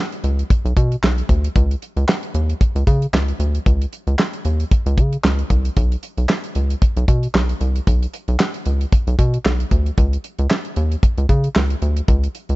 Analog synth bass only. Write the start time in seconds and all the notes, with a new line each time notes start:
0.24 C#2
0.65 B1
0.77 B2
1.03 B1
1.29 D2
1.56 C#2
1.96 C#2
2.34 D#2
2.75 C#2
2.87 C#3
3.13 C#2
3.39 D2
3.66 C#2
4.07 C#2
4.45 D#2
4.86 C#2
4.98 C#3
5.24 C#2
5.50 C2
5.77 B1
6.17 B1
6.55 C#2
6.97 B1
7.08 B2
7.34 B1
7.61 C2
7.87 B1
8.28 B1
8.66 C#2
9.07 B1
9.19 B2
9.45 B1
9.71 D2
9.98 C#2
10.39 C#2
10.77 D#2
11.18 C#2
11.29 C#3
11.56 C#2
11.82 D2
12.08 C#2
12.49 C#2